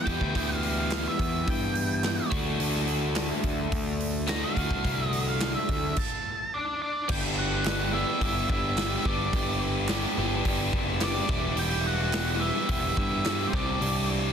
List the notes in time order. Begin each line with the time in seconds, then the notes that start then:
Already playing: E3 E4 G4 B4 G5
0.06 E2 E3 B3 E4 G4, kick, open hi-hat
0.21 D2, kick
0.34 D2 E3 B3 E4 G4, kick, open hi-hat
0.56 F5
0.63 open hi-hat
0.79 F5
0.91 snare, clap, open hi-hat
1.08 E5
1.19 E2, kick, open hi-hat
1.47 G2 G5, kick, open hi-hat
1.75 open hi-hat
2.03 snare, clap, open hi-hat
2.30 D2 D3 A3 D4 F#4 A4, kick, open hi-hat
2.60 D2, open hi-hat
2.75 snare
2.87 open hi-hat
3.15 snare, clap, open hi-hat
3.43 D2, kick, open hi-hat
3.72 D2, kick, open hi-hat
4.00 open hi-hat
4.27 A3 D4 F#4 A#5, snare, clap, open hi-hat
4.44 F5
4.55 D2 A3 D4 F#4, kick, open hi-hat
4.70 C2, kick
4.84 C2, kick, open hi-hat
5.06 D#5
5.13 open hi-hat
5.29 F5
5.40 snare, clap, open hi-hat
5.55 E5
5.69 D2, kick, open hi-hat
5.96 A5, kick, crash
6.54 D4 D5
6.82 D4 D5
7.09 G1 G3 B3 D4 E4 G4 B4 G5, kick, crash
7.37 F#4 F#5
7.65 B3 D4 G4, snare, clap, open hi-hat
7.92 B3 D4 E4 G4 E5
8.21 G1 B3 D4 E4 G4 E5, kick, open hi-hat
8.49 G1 E4 E5, kick
8.77 B3 D4 G4, snare, clap, open hi-hat
9.05 G1 B3 D4 G4 D5, kick
9.33 G1 B3 D4 G4, kick, open hi-hat
9.88 B3 D4 G4, snare, clap, open hi-hat
10.17 G1 B3 D4 G4
10.45 G1 B3 D4 G4, kick, open hi-hat
10.73 F#1, kick
11.00 B3 D4 G4 D5, snare, clap, open hi-hat
11.04 D4
11.29 E1 E3 G3 B3 D4 E4 G4 D5, kick, snare
11.56 E1 G3 B3 E4 G4 G5, open hi-hat
11.86 F#4 F#5
12.13 G3 B3 E4 G4, snare, clap, open hi-hat
12.40 G3 B3 E4 G4 E5
12.69 E1 G3 B3 E4 G4 E5, kick, open hi-hat
12.96 G2 E4 E5, kick
13.25 G3 B3 E4 G4, snare, clap, open hi-hat
13.47 C4 C5
13.52 C2 C3 G3 C4 D4 G4 D5, kick, snare
13.80 C2 G3 C4 D4 G4, open hi-hat